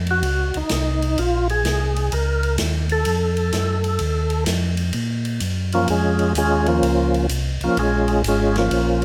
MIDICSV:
0, 0, Header, 1, 4, 480
1, 0, Start_track
1, 0, Key_signature, -5, "minor"
1, 0, Tempo, 470958
1, 1204, Time_signature, 4, 2, 24, 8
1, 9223, End_track
2, 0, Start_track
2, 0, Title_t, "Tonewheel organ"
2, 0, Program_c, 0, 16
2, 109, Note_on_c, 0, 66, 85
2, 580, Note_on_c, 0, 63, 73
2, 591, Note_off_c, 0, 66, 0
2, 727, Note_off_c, 0, 63, 0
2, 739, Note_on_c, 0, 63, 76
2, 1212, Note_on_c, 0, 65, 94
2, 1225, Note_off_c, 0, 63, 0
2, 1506, Note_off_c, 0, 65, 0
2, 1533, Note_on_c, 0, 68, 89
2, 2167, Note_on_c, 0, 70, 97
2, 2187, Note_off_c, 0, 68, 0
2, 2611, Note_off_c, 0, 70, 0
2, 2976, Note_on_c, 0, 69, 95
2, 4528, Note_off_c, 0, 69, 0
2, 5846, Note_on_c, 0, 65, 72
2, 5856, Note_on_c, 0, 53, 61
2, 5858, Note_on_c, 0, 58, 54
2, 5858, Note_on_c, 0, 61, 58
2, 5999, Note_off_c, 0, 65, 0
2, 6004, Note_off_c, 0, 53, 0
2, 6005, Note_off_c, 0, 58, 0
2, 6005, Note_off_c, 0, 61, 0
2, 6014, Note_on_c, 0, 65, 62
2, 6014, Note_on_c, 0, 68, 78
2, 6016, Note_on_c, 0, 56, 57
2, 6018, Note_on_c, 0, 61, 60
2, 6455, Note_off_c, 0, 65, 0
2, 6455, Note_off_c, 0, 68, 0
2, 6456, Note_off_c, 0, 56, 0
2, 6457, Note_off_c, 0, 61, 0
2, 6501, Note_on_c, 0, 65, 60
2, 6502, Note_on_c, 0, 56, 58
2, 6504, Note_on_c, 0, 68, 74
2, 6508, Note_on_c, 0, 61, 61
2, 6795, Note_off_c, 0, 65, 0
2, 6798, Note_off_c, 0, 61, 0
2, 6804, Note_off_c, 0, 56, 0
2, 6805, Note_off_c, 0, 68, 0
2, 6807, Note_on_c, 0, 65, 80
2, 6809, Note_on_c, 0, 53, 62
2, 6809, Note_on_c, 0, 58, 67
2, 6810, Note_on_c, 0, 61, 63
2, 7404, Note_off_c, 0, 65, 0
2, 7405, Note_off_c, 0, 53, 0
2, 7405, Note_off_c, 0, 58, 0
2, 7406, Note_off_c, 0, 61, 0
2, 7783, Note_on_c, 0, 65, 85
2, 7785, Note_on_c, 0, 53, 70
2, 7785, Note_on_c, 0, 58, 68
2, 7785, Note_on_c, 0, 61, 71
2, 7928, Note_off_c, 0, 65, 0
2, 7929, Note_off_c, 0, 53, 0
2, 7929, Note_off_c, 0, 58, 0
2, 7929, Note_off_c, 0, 61, 0
2, 7941, Note_on_c, 0, 68, 82
2, 7942, Note_on_c, 0, 61, 64
2, 7943, Note_on_c, 0, 56, 65
2, 7949, Note_on_c, 0, 65, 69
2, 8379, Note_off_c, 0, 68, 0
2, 8380, Note_off_c, 0, 56, 0
2, 8380, Note_off_c, 0, 61, 0
2, 8384, Note_off_c, 0, 65, 0
2, 8435, Note_on_c, 0, 68, 81
2, 8442, Note_on_c, 0, 56, 63
2, 8442, Note_on_c, 0, 65, 64
2, 8444, Note_on_c, 0, 61, 65
2, 8731, Note_off_c, 0, 68, 0
2, 8732, Note_off_c, 0, 61, 0
2, 8734, Note_off_c, 0, 65, 0
2, 8735, Note_off_c, 0, 56, 0
2, 8745, Note_on_c, 0, 61, 61
2, 8746, Note_on_c, 0, 65, 78
2, 8751, Note_on_c, 0, 58, 64
2, 8753, Note_on_c, 0, 53, 59
2, 9223, Note_off_c, 0, 53, 0
2, 9223, Note_off_c, 0, 58, 0
2, 9223, Note_off_c, 0, 61, 0
2, 9223, Note_off_c, 0, 65, 0
2, 9223, End_track
3, 0, Start_track
3, 0, Title_t, "Tonewheel organ"
3, 0, Program_c, 1, 16
3, 0, Note_on_c, 1, 41, 83
3, 227, Note_on_c, 1, 37, 89
3, 230, Note_off_c, 1, 41, 0
3, 533, Note_off_c, 1, 37, 0
3, 561, Note_on_c, 1, 37, 36
3, 641, Note_off_c, 1, 37, 0
3, 726, Note_on_c, 1, 36, 85
3, 1190, Note_off_c, 1, 36, 0
3, 1205, Note_on_c, 1, 34, 85
3, 1670, Note_off_c, 1, 34, 0
3, 1675, Note_on_c, 1, 36, 82
3, 2145, Note_off_c, 1, 36, 0
3, 2167, Note_on_c, 1, 37, 92
3, 2631, Note_off_c, 1, 37, 0
3, 2656, Note_on_c, 1, 39, 92
3, 3115, Note_off_c, 1, 39, 0
3, 3122, Note_on_c, 1, 41, 80
3, 3588, Note_off_c, 1, 41, 0
3, 3598, Note_on_c, 1, 42, 90
3, 4066, Note_off_c, 1, 42, 0
3, 4080, Note_on_c, 1, 39, 89
3, 4547, Note_off_c, 1, 39, 0
3, 4550, Note_on_c, 1, 41, 89
3, 5022, Note_off_c, 1, 41, 0
3, 5038, Note_on_c, 1, 46, 82
3, 5506, Note_off_c, 1, 46, 0
3, 5515, Note_on_c, 1, 42, 75
3, 5984, Note_off_c, 1, 42, 0
3, 6004, Note_on_c, 1, 41, 89
3, 6469, Note_off_c, 1, 41, 0
3, 6471, Note_on_c, 1, 39, 83
3, 6942, Note_off_c, 1, 39, 0
3, 6950, Note_on_c, 1, 37, 90
3, 7422, Note_off_c, 1, 37, 0
3, 7430, Note_on_c, 1, 36, 85
3, 7735, Note_off_c, 1, 36, 0
3, 7753, Note_on_c, 1, 36, 41
3, 7835, Note_off_c, 1, 36, 0
3, 7917, Note_on_c, 1, 34, 87
3, 8386, Note_off_c, 1, 34, 0
3, 8395, Note_on_c, 1, 32, 94
3, 8865, Note_off_c, 1, 32, 0
3, 8867, Note_on_c, 1, 34, 87
3, 9223, Note_off_c, 1, 34, 0
3, 9223, End_track
4, 0, Start_track
4, 0, Title_t, "Drums"
4, 68, Note_on_c, 9, 51, 46
4, 169, Note_off_c, 9, 51, 0
4, 232, Note_on_c, 9, 51, 61
4, 334, Note_off_c, 9, 51, 0
4, 551, Note_on_c, 9, 51, 46
4, 653, Note_off_c, 9, 51, 0
4, 706, Note_on_c, 9, 44, 57
4, 706, Note_on_c, 9, 51, 71
4, 710, Note_on_c, 9, 38, 69
4, 808, Note_off_c, 9, 44, 0
4, 808, Note_off_c, 9, 51, 0
4, 812, Note_off_c, 9, 38, 0
4, 1042, Note_on_c, 9, 51, 46
4, 1144, Note_off_c, 9, 51, 0
4, 1200, Note_on_c, 9, 51, 60
4, 1302, Note_off_c, 9, 51, 0
4, 1523, Note_on_c, 9, 51, 40
4, 1625, Note_off_c, 9, 51, 0
4, 1679, Note_on_c, 9, 44, 59
4, 1679, Note_on_c, 9, 51, 60
4, 1684, Note_on_c, 9, 38, 64
4, 1781, Note_off_c, 9, 44, 0
4, 1781, Note_off_c, 9, 51, 0
4, 1785, Note_off_c, 9, 38, 0
4, 2001, Note_on_c, 9, 51, 45
4, 2103, Note_off_c, 9, 51, 0
4, 2159, Note_on_c, 9, 51, 60
4, 2261, Note_off_c, 9, 51, 0
4, 2478, Note_on_c, 9, 51, 43
4, 2580, Note_off_c, 9, 51, 0
4, 2629, Note_on_c, 9, 44, 53
4, 2629, Note_on_c, 9, 51, 72
4, 2633, Note_on_c, 9, 38, 70
4, 2731, Note_off_c, 9, 44, 0
4, 2731, Note_off_c, 9, 51, 0
4, 2735, Note_off_c, 9, 38, 0
4, 2948, Note_on_c, 9, 51, 45
4, 3050, Note_off_c, 9, 51, 0
4, 3108, Note_on_c, 9, 51, 65
4, 3210, Note_off_c, 9, 51, 0
4, 3431, Note_on_c, 9, 51, 43
4, 3533, Note_off_c, 9, 51, 0
4, 3593, Note_on_c, 9, 44, 52
4, 3593, Note_on_c, 9, 51, 60
4, 3597, Note_on_c, 9, 38, 64
4, 3695, Note_off_c, 9, 44, 0
4, 3695, Note_off_c, 9, 51, 0
4, 3699, Note_off_c, 9, 38, 0
4, 3913, Note_on_c, 9, 51, 44
4, 4015, Note_off_c, 9, 51, 0
4, 4064, Note_on_c, 9, 51, 59
4, 4165, Note_off_c, 9, 51, 0
4, 4382, Note_on_c, 9, 51, 44
4, 4483, Note_off_c, 9, 51, 0
4, 4546, Note_on_c, 9, 44, 57
4, 4546, Note_on_c, 9, 51, 75
4, 4550, Note_on_c, 9, 38, 66
4, 4648, Note_off_c, 9, 44, 0
4, 4648, Note_off_c, 9, 51, 0
4, 4652, Note_off_c, 9, 38, 0
4, 4863, Note_on_c, 9, 51, 49
4, 4965, Note_off_c, 9, 51, 0
4, 5021, Note_on_c, 9, 51, 60
4, 5123, Note_off_c, 9, 51, 0
4, 5349, Note_on_c, 9, 51, 44
4, 5451, Note_off_c, 9, 51, 0
4, 5506, Note_on_c, 9, 44, 50
4, 5506, Note_on_c, 9, 51, 62
4, 5608, Note_off_c, 9, 44, 0
4, 5608, Note_off_c, 9, 51, 0
4, 5834, Note_on_c, 9, 51, 46
4, 5936, Note_off_c, 9, 51, 0
4, 5989, Note_on_c, 9, 51, 58
4, 6091, Note_off_c, 9, 51, 0
4, 6307, Note_on_c, 9, 51, 45
4, 6409, Note_off_c, 9, 51, 0
4, 6473, Note_on_c, 9, 44, 58
4, 6473, Note_on_c, 9, 51, 64
4, 6575, Note_off_c, 9, 44, 0
4, 6575, Note_off_c, 9, 51, 0
4, 6791, Note_on_c, 9, 51, 44
4, 6893, Note_off_c, 9, 51, 0
4, 6960, Note_on_c, 9, 51, 64
4, 7062, Note_off_c, 9, 51, 0
4, 7279, Note_on_c, 9, 51, 44
4, 7381, Note_off_c, 9, 51, 0
4, 7433, Note_on_c, 9, 44, 58
4, 7433, Note_on_c, 9, 51, 72
4, 7535, Note_off_c, 9, 44, 0
4, 7535, Note_off_c, 9, 51, 0
4, 7754, Note_on_c, 9, 51, 45
4, 7856, Note_off_c, 9, 51, 0
4, 7920, Note_on_c, 9, 51, 56
4, 8022, Note_off_c, 9, 51, 0
4, 8233, Note_on_c, 9, 51, 45
4, 8335, Note_off_c, 9, 51, 0
4, 8400, Note_on_c, 9, 44, 59
4, 8400, Note_on_c, 9, 51, 68
4, 8502, Note_off_c, 9, 44, 0
4, 8502, Note_off_c, 9, 51, 0
4, 8720, Note_on_c, 9, 51, 47
4, 8724, Note_on_c, 9, 38, 49
4, 8822, Note_off_c, 9, 51, 0
4, 8826, Note_off_c, 9, 38, 0
4, 8877, Note_on_c, 9, 51, 64
4, 8979, Note_off_c, 9, 51, 0
4, 9192, Note_on_c, 9, 51, 42
4, 9223, Note_off_c, 9, 51, 0
4, 9223, End_track
0, 0, End_of_file